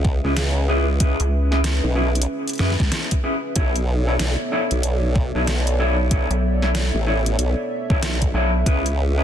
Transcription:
Already playing: C#2 C#4 G#4 B4 E5
0.05 kick
0.24 C#2 C#4 E4 G#4 B4
0.37 snare, closed hi-hat
0.68 C#4 E4 G#4 B4
1.00 C#4 E4 G#4 B4, kick, closed hi-hat
1.20 C#2, closed hi-hat
1.51 C#4 E4 G#4 B4, snare
1.64 snare, closed hi-hat
1.84 B1
1.95 C#4 E4 G#4 B4
2.15 closed hi-hat
2.22 closed hi-hat
2.48 closed hi-hat
2.49 closed hi-hat
2.53 closed hi-hat
2.55 closed hi-hat
2.58 F#2 C#4 E4 G#4 B4, snare, closed hi-hat
2.70 snare
2.80 C#2, kick, snare
2.92 snare, closed hi-hat
3.11 kick, closed hi-hat
3.24 C#4 E4 G#4 B4
3.56 B1 B3 D4 E4 A4 C#5 D5 E5, kick, closed hi-hat
3.76 closed hi-hat
4.07 D4 E4 A4 C#5
4.19 B1, snare, closed hi-hat
4.52 D4 E4 A4 C#5
4.71 B1, closed hi-hat
4.83 closed hi-hat
5.16 kick
5.35 B1 D4 E4 A4 C#5
5.47 snare, closed hi-hat
5.67 closed hi-hat
5.79 D4 E4 A4 C#5
6.11 D4 E4 A4 C#5, kick, closed hi-hat
6.30 B1, closed hi-hat
6.62 D4 E4 A4 C#5, snare
6.75 snare, closed hi-hat
6.94 A1
7.07 D4 E4 A4 C#5
7.26 closed hi-hat
7.38 B1, closed hi-hat
7.90 B1 D4 E4 A4 C#5, kick
8.03 snare, closed hi-hat
8.22 kick, closed hi-hat
8.34 B1 D4 E4 A4 C#5
8.66 C#2 C#4 E4 G#4 B4, kick, closed hi-hat
8.86 closed hi-hat
9.18 C#4 E4 G#4 B4

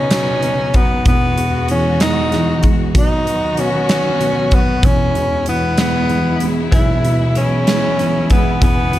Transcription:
Already playing: B1 B2 C#3 F#3 B3 C#4 D#4
0.11 F#3, snare, closed hi-hat
0.43 B2, closed hi-hat
0.74 F#3 B3, kick, closed hi-hat
1.05 E1 E2 E3 G#3 B3 F#4, kick, closed hi-hat
1.38 B2, closed hi-hat
1.68 E3 C#4, closed hi-hat
2.00 G#3 D#4, snare, closed hi-hat
2.32 E3, snare, closed hi-hat
2.63 G#3, kick, closed hi-hat
2.95 B1 B2 D#3 B3 D#4 F#4, kick, closed hi-hat
3.26 F#3, closed hi-hat
3.57 B2 C#4, closed hi-hat
3.89 F#3, snare, closed hi-hat
4.20 B2, closed hi-hat
4.51 F#3 B3, kick, closed hi-hat
4.83 E1 E2 B2 G#3 C#4 E4, kick, closed hi-hat
5.15 B2, closed hi-hat
5.46 E3 B3, closed hi-hat
5.78 G#3 B3, snare, closed hi-hat
6.09 E3, closed hi-hat
6.40 G#3, closed hi-hat
6.72 B1 E3 B3 E4 G#4, kick, closed hi-hat
7.04 B2, closed hi-hat
7.35 E3 B3 C#4 E4 G#4, closed hi-hat
7.67 E3 G#3 B3 E4 G#4, snare, closed hi-hat
7.99 E3, closed hi-hat
8.30 G#3 B3 E4 G#4, kick, closed hi-hat
8.61 E1 E2 C#3 E3 B3 C#4 G#4, kick, closed hi-hat
8.93 B2, closed hi-hat

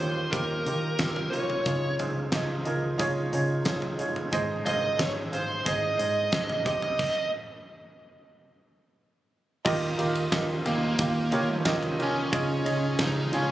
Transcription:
Already playing: D#3 A#3 F4 G4 A#4 C5
0.00 D#2 D#4 F4 G4 C#5
0.31 D#2 D#4 F4 G4 A#4, kick, closed hi-hat
0.66 D#3 D#4 F4 G4 A#4, closed hi-hat
0.99 D#2 D#4 F4 G4 A#4, kick, snare, closed hi-hat
1.16 floor tom
1.30 C2 D#4 F4 G4 A#4 C#5, closed hi-hat
1.50 floor tom
1.66 C#2 C#3 G#3 D#4 F4 G#4 C#5, kick, closed hi-hat
1.99 C#2 D#4 F4 G#4 C5, closed hi-hat, floor tom
2.32 C#2 D#4 F4 G#4 D#5, kick, snare, closed hi-hat
2.64 C#2 D#4 F4 G#4 A#4, closed hi-hat
2.98 C#2 D#4 F4 G#4 C#5, kick, closed hi-hat
3.32 C#3 D#4 F4 G#4 C#5, closed hi-hat
3.65 C#2 D#4 F4 G#4 C#5, kick, snare, closed hi-hat
3.82 floor tom
3.99 G1 D#4 F4 G#4 C#5, closed hi-hat
4.16 floor tom
4.31 G#1 G#2 D#4 G#4 C5 D#5, kick, closed hi-hat
4.64 G#1 D#4 G#4 C5 D#5 F5, closed hi-hat, floor tom
4.98 G#1 D#4 G#4 C5 C#5 D#5, kick, snare, closed hi-hat
5.31 G#1 D#4 G#4 C5 F5, closed hi-hat
5.65 G#1 D#4 G#4 C5 D#5, kick, closed hi-hat
5.69 D#5
5.98 G#2 D#4 G#4 C5 D#5, closed hi-hat
6.32 G#1 D#4 G#4 C5 D#5, kick, snare, closed hi-hat
6.50 floor tom
6.65 C2 C3 D#4 G4 C5 D#5, kick, closed hi-hat
6.82 floor tom
6.99 kick, crash
9.65 D#2 D#3 A#3 D#4 F4 G4 A#4 D#5, kick, crash
9.97 D#2 D#4 F4 G4 A#4 F5, ride
10.15 ride
10.32 D#2 D#4 F4 G4 A#4 D#5, kick, snare, ride
10.64 D#2 A#3 D#4 F4 G4 A#4 F5, floor tom, ride
10.99 D#2 D#4 F4 G4 A#4 F5, kick, ride
11.31 D#3 D#4 F4 G4 A#4 C#5, ride
11.65 D#2 D#4 F4 G4 A#4 D#5, kick, snare, ride
11.83 floor tom, ride
11.98 C2 D#4 F4 G4 A#4 C#5, ride
12.03 C#4
12.31 C#2 C#3 G#3 D#4 F4 G#4 C#5 D#5, kick, ride
12.64 C#2 D#4 F4 G#4 C#5 D#5, ride
12.98 C#2 D#4 F4 G#4 C#5 D#5, kick, snare, ride
13.32 C#2 C#4 D#4 F4 G#4 C#5 F5, ride

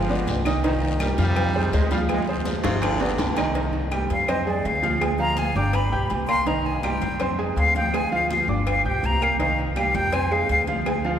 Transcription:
Already playing: G1 B2 D3 F3
0.09 B3 B4 D5, high conga
0.27 C2, cowbell, high conga, low agogo, short guiro
0.45 D#3 D#4 D#5, cowbell, low agogo, short guiro, claves
0.63 G2 A#2 D#3 D#4 D#5, cowbell, high conga, low agogo, long guiro
0.82 G2 A#2 D#3, high conga, low agogo
1.00 G3 G4 A#4, cowbell, high conga, low agogo, short guiro, claves
1.18 F2 C3 F3 G3 F4 F5, cowbell, short guiro
1.36 cowbell, high conga, low conga, low agogo, long guiro, claves
1.54 G#3 G#4 C5, high conga, low conga, low agogo
1.73 D2 G#3 G#4 C5, cowbell, high conga, low timbale, short guiro
1.91 F3 G3 F4 F5, cowbell, high conga, short guiro
2.09 C3 F3 G#3, cowbell, high conga, low agogo, long guiro, claves
2.27 G#2 C3 F3 G#3 G#4 C5, high conga, low agogo
2.45 cowbell, high conga, low agogo, short guiro
2.63 G1 C3 F3 F4 F5, high bongo, high timbale, short guiro
2.82 D3, cowbell, high bongo, high conga, high timbale, low agogo, long guiro, claves
3.00 C3 B3 B4 D5, low bongo, low timbale
3.18 C2 D3, cowbell, low bongo, high conga, low timbale, low agogo, short guiro
3.37 D#3 D#4 D#5, cowbell, low bongo, high conga, low timbale, low agogo, short guiro, claves
3.55 D#3 D#4 D#5, cowbell, high conga, low agogo
3.73 high conga, low agogo
3.91 G3 G4 G5, cowbell, high conga, low agogo, claves
4.10 F2 F5, cowbell, high conga
4.28 C4 C5 D#5 C6, cowbell, high conga, low conga, low agogo, claves
4.46 G#3 G#4 D5 G#5, high conga, low conga, low agogo
4.65 D2 F5, cowbell, high conga
4.83 F3 F4 F5, cowbell, high conga
5.01 G#3 G#4 G#5, cowbell, high conga, low agogo, claves
5.19 F3 F4 F5 A#5, high conga, low agogo
5.37 G#5, cowbell, high conga, low agogo
5.56 G1 D4 D5 G5 D6
5.73 B5, cowbell, high conga, low agogo, claves
5.91 B1 G4 G5 G6, high conga
6.10 C2, cowbell, high conga, low agogo
6.28 A#3 A#4 A#5 C6, cowbell, low agogo, claves
6.46 D#3 D#4 D#5 A#5, cowbell, high conga, low agogo
6.65 G#5, high conga, low agogo
6.83 G3 G4 G5, cowbell, high conga, low agogo, claves
7.02 F2, cowbell, high conga
7.20 C4 C5 C6, cowbell, high conga, low conga, low agogo, claves
7.38 G#3 G#4 G#5, high conga, low agogo
7.56 D2 F5, cowbell, high conga, low timbale
7.75 F3 F4 F5 G5, cowbell, high conga
7.93 G#3 G#4 G#5, cowbell, high conga, low agogo, claves
8.12 F3 F4 F5, high conga, low agogo
8.30 F5, cowbell, high conga, low agogo
8.48 G1 D4 D5 D6
8.66 F5, cowbell, high conga, low agogo, claves
8.85 B1 G4 G5 G6, high conga
9.03 C2 A#5, cowbell, high conga, low agogo
9.21 A#3 A#4 F5 A#5, cowbell, high conga, low agogo, claves
9.39 D#3 D#4 D#5 F5, cowbell, high conga, low agogo
9.58 high conga, low agogo
9.76 G3 G4 F5 G5, cowbell, high conga, low agogo, claves
9.95 F2 G5, cowbell, high conga
10.12 C4 C5 G#5 C6, cowbell, high conga, low conga, low agogo, claves
10.31 G#3 G#4 F5 G#5, high conga, low agogo
10.49 D2 F5, cowbell, high conga
10.67 F3 F4 F5, cowbell, high conga
10.86 G#3 G#4 G#5, cowbell, high conga, low agogo, claves
11.04 F3 F4 F5, high conga, low agogo

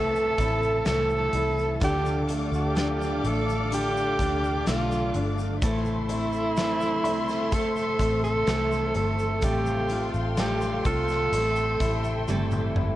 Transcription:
Already playing: C2 A3 C4 E4 A4 E5 A5
0.15 shaker
0.37 A1 A3 C4 E4 A4, kick, closed hi-hat, shaker
0.62 shaker
0.85 C2 A2 E3 A3 C4 E4 A4, snare, closed hi-hat, shaker
1.10 shaker
1.33 C2 E4, closed hi-hat
1.59 shaker
1.80 D2 D3 A3 D4 F4 G4 A4 D5 F5 D6, kick, closed hi-hat, shaker
2.06 shaker
2.28 A3 D4 F4 A4, closed hi-hat, shaker
2.52 D2 G4, shaker
2.75 D3 A3 D4 F4 A4, snare, closed hi-hat, shaker
3.02 shaker
3.22 A1 A3 D4 F4 A4, closed hi-hat
3.27 A4
3.49 shaker
3.71 D3 A3 D4 F4 G4 A4, closed hi-hat, shaker
3.97 shaker
4.18 D2 D4 F4 A4, kick, closed hi-hat, shaker
4.44 shaker
4.66 B1 D3 A3 D4 F4 A4, snare, closed hi-hat, shaker
4.91 shaker
5.14 G1 D4, closed hi-hat
5.38 shaker
5.59 A1 A2 E3 A3 C4 A4 C5 E5 C6, kick, closed hi-hat, shaker
5.64 E4 A4
5.85 shaker
6.09 A3 C4 E4 A4, closed hi-hat, shaker
6.33 shaker
6.57 A2 E3 A3 C4 E4 A4, snare, closed hi-hat, shaker
6.81 shaker
7.04 C2 A3 C4 E4 A4, closed hi-hat
7.29 snare, shaker
7.51 A3 C4 E4 A4, kick, closed hi-hat, shaker
7.76 shaker
7.99 A1 A3 C4 E4 A4, kick, closed hi-hat, shaker
8.24 A4, shaker
8.46 C2 A2 E3 A3 C4 E4 A4, snare, closed hi-hat, shaker
8.72 shaker
8.94 G1 A3 A4, closed hi-hat
9.19 shaker
9.41 A1 A2 F3 G3 A3 C4 F4 G4 A4 F5 G5 C6, kick, closed hi-hat, shaker
9.66 shaker
9.89 G3 C4 F4 A4, closed hi-hat, shaker
10.14 A1, shaker
10.37 A2 F3 G3 A3 C4 F4 G4 A4, snare, closed hi-hat, shaker
10.61 shaker
10.84 C2 G3 C4 F4 A4, kick, closed hi-hat, shaker
11.08 snare, shaker
11.32 A1 G3 A3 C4 E4 A4 E5 G5, closed hi-hat, shaker
11.56 shaker
11.80 A1 G3 C4 E4 A4, kick, closed hi-hat, shaker
12.04 shaker
12.28 G1 A2 E3 G3 A3 C4 E4 A4, high tom, shaker
12.51 mid tom, shaker
12.75 G1 E4, mid tom

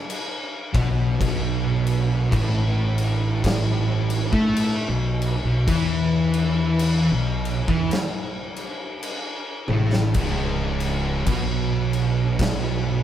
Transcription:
0.10 crash
0.73 B1 B2, kick, crash
1.20 B1 B2, kick, crash
1.87 crash
2.32 A1 A2, kick, crash
2.98 crash
3.44 kick, snare, crash
4.10 crash
4.32 A2 A3, kick
4.56 crash
4.88 B1 B2
5.22 crash
5.44 B1 B2
5.68 E2 E3, kick, crash
6.34 crash
6.79 crash
7.11 B1 B2
7.45 crash
7.68 E2 E3, kick
7.91 snare, crash
8.56 crash
9.03 crash
9.68 A1 A2, high tom
9.93 snare
10.14 C#1 C#2, kick, crash
10.80 crash
11.26 B1 B2, kick, crash
11.93 crash
12.39 kick, snare, crash

